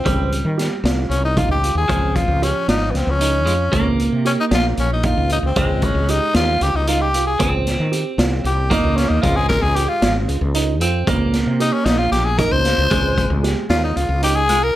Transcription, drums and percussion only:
0.06 kick loud
0.06 closed hi-hat medium
0.32 closed hi-hat medium
0.59 snare soft
0.59 closed hi-hat medium
0.85 snare medium
0.85 closed hi-hat medium
1.11 closed hi-hat medium
1.37 kick medium
1.37 closed hi-hat medium
1.64 closed hi-hat medium
1.89 kick loud
1.89 closed hi-hat medium
2.16 kick medium
2.16 closed hi-hat medium
2.43 closed hi-hat medium
2.69 snare medium
2.69 closed hi-hat medium
2.95 snare soft
2.95 closed hi-hat medium
3.21 closed hi-hat medium
3.47 closed hi-hat medium
3.73 kick loud
3.73 closed hi-hat medium
4.00 closed hi-hat soft
4.25 closed hi-hat soft
4.51 snare loud
4.51 closed hi-hat medium
4.77 closed hi-hat soft
5.03 kick loud
5.03 closed hi-hat medium
5.29 closed hi-hat medium
5.56 kick loud
5.56 closed hi-hat medium
5.82 kick medium
5.82 closed hi-hat medium
6.08 closed hi-hat medium
6.34 snare medium
6.34 closed hi-hat medium
6.61 closed hi-hat medium
6.87 closed hi-hat medium
7.14 closed hi-hat medium
7.40 kick loud
7.40 closed hi-hat medium
7.67 snare soft
7.67 closed hi-hat medium
7.93 closed hi-hat medium
8.19 snare medium
8.19 closed hi-hat medium
8.45 closed hi-hat medium
8.71 kick medium
8.71 snare soft
8.71 closed hi-hat medium
8.98 snare soft
8.98 closed hi-hat medium
9.23 kick loud
9.23 closed hi-hat medium
9.50 kick medium
9.50 snare soft
9.50 closed hi-hat medium
9.76 closed hi-hat medium
10.02 snare medium
10.02 closed hi-hat medium
10.29 closed hi-hat medium
10.54 closed hi-hat medium
10.81 closed hi-hat medium
11.07 kick loud
11.07 closed hi-hat medium
11.33 snare soft
11.33 closed hi-hat medium
11.60 closed hi-hat medium
11.86 snare medium
11.86 closed hi-hat medium
12.12 snare soft
12.12 closed hi-hat medium
12.38 kick medium
12.38 closed hi-hat medium
12.65 snare soft
12.65 closed hi-hat medium
12.91 kick loud
12.91 closed hi-hat medium
13.18 kick medium
13.18 closed hi-hat medium
13.44 snare soft
13.44 closed hi-hat medium
13.70 snare loud
13.70 closed hi-hat medium
13.97 closed hi-hat soft
14.23 closed hi-hat medium
14.49 closed hi-hat medium

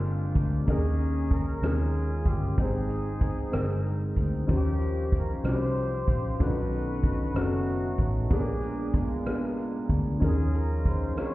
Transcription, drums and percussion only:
0.05 closed hi-hat soft
0.35 kick medium
0.35 closed hi-hat medium
0.68 kick medium
0.68 closed hi-hat medium
1.00 closed hi-hat soft
1.31 kick medium
1.31 closed hi-hat medium
1.63 cross-stick medium
1.63 closed hi-hat medium
1.95 closed hi-hat soft
2.26 kick medium
2.26 closed hi-hat soft
2.58 kick medium
2.58 closed hi-hat medium
2.89 closed hi-hat soft
3.21 kick medium
3.21 closed hi-hat medium
3.53 cross-stick loud
3.53 closed hi-hat medium
3.86 closed hi-hat soft
4.17 kick medium
4.17 closed hi-hat soft
4.49 kick medium
4.49 closed hi-hat medium
4.81 closed hi-hat soft
5.12 kick medium
5.12 closed hi-hat soft
5.44 cross-stick medium
5.44 closed hi-hat medium
5.77 closed hi-hat soft
6.08 kick medium
6.08 closed hi-hat medium
6.40 kick medium
6.40 closed hi-hat medium
6.72 closed hi-hat soft
7.03 kick medium
7.03 closed hi-hat medium
7.35 cross-stick loud
7.35 closed hi-hat medium
7.69 closed hi-hat soft
7.98 kick medium
7.98 closed hi-hat medium
8.31 kick medium
8.31 closed hi-hat medium
8.63 closed hi-hat soft
8.94 kick medium
8.94 closed hi-hat medium
9.26 cross-stick medium
9.26 closed hi-hat medium
9.59 closed hi-hat soft
9.89 kick medium
9.89 closed hi-hat soft
10.22 kick medium
10.22 closed hi-hat medium
10.54 closed hi-hat soft
10.85 kick medium
10.85 closed hi-hat medium
11.17 cross-stick medium
11.17 closed hi-hat medium

